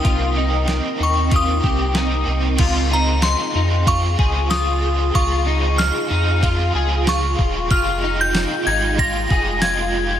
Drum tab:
CC |--------|x-------|--------|--------|
RD |--------|x-x-x-x-|x-x-x-x-|x-x-x-x-|
HH |x-x-x-x-|--------|--------|--------|
TB |--------|--x---x-|--x---x-|--x---x-|
SD |--o---o-|--o---o-|--o---o-|--o---o-|
BD |o---oo--|o---oo--|o---o--o|o---oo--|